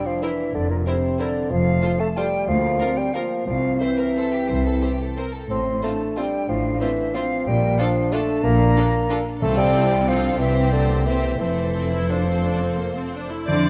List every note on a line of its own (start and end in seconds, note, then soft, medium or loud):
0.00 0.84 D4 medium
0.05 0.24 F3 medium
0.05 0.23 F5 medium
0.22 0.53 E3 medium
0.22 0.31 E4 soft
0.22 0.30 A#4 soft
0.22 0.31 C5 soft
0.22 0.56 E5 medium
0.54 0.81 F1 medium
0.54 0.81 F2 medium
0.54 0.69 D3 medium
0.54 0.69 D5 medium
0.69 0.85 A#2 medium
0.69 0.75 A#4 medium
0.86 1.21 C3 medium
0.86 1.51 C4 medium
0.86 0.95 E4 soft
0.86 0.94 A#4 soft
0.86 1.21 C5 medium
0.86 0.95 C5 medium
1.18 1.52 D3 medium
1.18 1.28 E4 soft
1.18 1.27 A#4 soft
1.18 1.26 C5 soft
1.18 1.51 D5 medium
1.50 1.77 F1 medium
1.50 1.77 F2 medium
1.50 1.99 F3 medium
1.50 2.48 A3 medium
1.50 2.01 F5 medium
1.82 1.91 F4 soft
1.82 1.90 A4 soft
1.82 1.91 C5 medium
1.99 2.08 A3 medium
1.99 2.18 A5 medium
2.16 2.49 G3 medium
2.16 2.25 F4 medium
2.16 2.24 A4 medium
2.16 2.25 C5 medium
2.16 2.47 G5 medium
2.47 2.74 D2 medium
2.47 2.99 F3 medium
2.47 2.80 A#3 medium
2.47 2.98 F5 medium
2.79 3.14 C4 medium
2.79 2.89 F4 medium
2.79 2.87 A#4 soft
2.79 2.88 A#4 soft
2.97 3.14 G3 medium
2.97 3.15 G5 medium
3.13 3.47 F3 medium
3.13 3.47 A#3 medium
3.13 3.23 F4 soft
3.13 3.22 A#4 medium
3.13 3.23 A#4 soft
3.13 3.46 F5 medium
3.47 3.75 C2 medium
3.47 3.83 F3 medium
3.47 5.35 C4 medium
3.47 3.82 F5 medium
3.80 5.18 E3 medium
3.80 3.89 C4 soft
3.80 3.97 C5 medium
3.80 3.89 C5 soft
3.80 5.18 E5 medium
3.98 4.16 A#4 medium
4.16 4.24 C4 soft
4.16 4.33 A4 medium
4.16 4.25 C5 soft
4.33 4.49 G4 medium
4.48 4.77 C2 medium
4.48 4.65 C5 medium
4.66 4.83 A4 medium
4.82 4.91 C4 soft
4.82 5.00 G4 soft
4.82 4.90 C5 soft
4.99 5.17 A4 medium
5.17 5.26 C4 soft
5.17 5.35 A#4 medium
5.17 5.25 C5 soft
5.34 5.50 A4 medium
5.50 5.78 A1 medium
5.50 5.78 A2 medium
5.50 5.82 A3 medium
5.50 5.81 C4 medium
5.50 5.85 C6 medium
5.82 6.19 A3 medium
5.82 5.92 C4 soft
5.82 7.15 D4 medium
5.82 5.92 F4 soft
5.82 5.90 C5 soft
5.82 6.18 A5 medium
6.17 6.48 G3 medium
6.17 6.26 C4 soft
6.17 6.25 F4 soft
6.17 6.25 C5 soft
6.17 6.50 G5 medium
6.48 6.76 A1 medium
6.48 6.76 A2 medium
6.48 6.80 F3 medium
6.48 6.79 F5 medium
6.80 7.16 E3 medium
6.80 6.89 C4 medium
6.80 6.89 F4 soft
6.80 6.89 C5 medium
6.80 7.15 E5 medium
7.14 7.49 F3 medium
7.14 7.23 C4 soft
7.14 7.47 C4 medium
7.14 7.22 F4 medium
7.14 7.23 C5 medium
7.14 7.45 F5 medium
7.46 7.73 A#1 medium
7.46 7.73 A#2 medium
7.46 7.81 G3 medium
7.46 7.79 A#3 medium
7.46 7.80 G5 medium
7.78 8.14 F3 medium
7.78 7.87 D4 medium
7.78 9.09 D4 medium
7.78 7.86 F4 medium
7.78 7.88 A4 medium
7.78 8.11 F5 medium
8.11 8.43 A3 medium
8.11 8.21 D4 medium
8.11 8.20 F4 medium
8.11 8.22 A4 medium
8.11 8.45 A5 medium
8.43 8.70 A#1 medium
8.43 8.70 A#2 medium
8.43 9.24 A#3 loud
8.43 9.26 A#5 medium
8.76 8.85 D4 medium
8.76 8.84 F4 medium
8.76 8.85 A4 medium
9.09 9.17 D4 medium
9.09 9.41 D4 medium
9.09 9.17 F4 medium
9.09 9.18 A4 medium
9.41 10.35 C2 medium
9.41 10.35 C3 medium
9.41 9.87 C3 medium
9.41 9.56 A3 loud
9.41 10.04 C4 medium
9.41 9.74 C4 medium
9.41 10.04 F4 medium
9.41 10.04 A4 medium
9.41 9.60 A5 medium
9.57 10.09 G3 medium
9.57 10.09 G5 medium
9.74 10.08 E4 medium
10.07 10.38 F3 medium
10.07 10.38 C4 medium
10.07 10.39 D4 medium
10.07 10.38 F4 medium
10.07 10.39 A4 medium
10.07 10.38 F5 medium
10.39 11.37 C2 medium
10.39 11.38 C3 medium
10.39 10.71 E3 medium
10.39 11.04 C4 medium
10.39 10.71 C4 medium
10.39 11.05 G4 medium
10.39 11.05 C5 medium
10.39 10.72 E5 medium
10.71 11.05 D3 medium
10.71 11.40 A#3 medium
10.71 11.05 D5 medium
11.06 11.38 E3 medium
11.06 11.38 C4 soft
11.06 11.39 G4 soft
11.06 11.38 C5 medium
11.06 11.38 E5 medium
11.38 13.31 F1 medium
11.38 13.31 F2 medium
11.38 12.12 E3 medium
11.38 13.32 A3 soft
11.38 11.70 C4 soft
11.38 12.09 A4 soft
11.38 12.08 C5 soft
11.38 12.08 E5 medium
11.74 11.91 C4 medium
11.92 12.10 E4 medium
12.09 13.14 F3 medium
12.09 12.28 D4 soft
12.09 13.29 A4 soft
12.09 13.28 C5 soft
12.09 13.12 F5 soft
12.27 12.44 C4 soft
12.44 12.60 D4 medium
12.60 12.78 C4 medium
12.77 12.95 A#3 soft
12.96 13.14 C4 medium
13.13 13.31 D4 medium
13.31 13.47 E4 soft
13.46 13.70 F2 medium
13.46 13.70 D3 medium
13.46 13.70 A3 medium
13.46 13.70 D4 medium
13.46 13.70 C5 medium
13.46 13.70 D5 medium